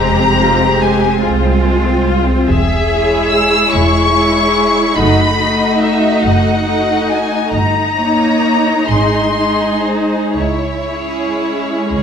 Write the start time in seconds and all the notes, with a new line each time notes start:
Already playing: F1 G#3 C4 G4 C5 A#5
0.19 C4
0.41 F4
0.62 C4
0.81 G#3 G#5
1.04 C4
1.23 C2 F4
1.46 C4
1.65 G#3
1.86 C4
2.06 F4
2.26 C4
2.47 E1 G#4 E5
2.88 G#3 E4 G#4 C#5
3.31 E6
3.73 E1 E4 C#6
4.14 G#3 E4 G#4 C#5
4.96 F#1 A3 D#4 F#4 D#5 B5
5.38 A3 D#4 F#4 D#5
5.81 E5
6.24 F#1 F#5
6.65 A3 D#4 F#4 D#5
7.10 G#5
7.54 G1 D#4 A#5
7.97 A#3 D#4 C#5
8.89 G#1 G#3 D#4 G#4 C6
9.36 G#3 D#4 G#4
9.86 C5
10.38 C#2 E4 C#5
10.90 G#3 C#4 E4 G#4
11.90 C#2 G#3 G#4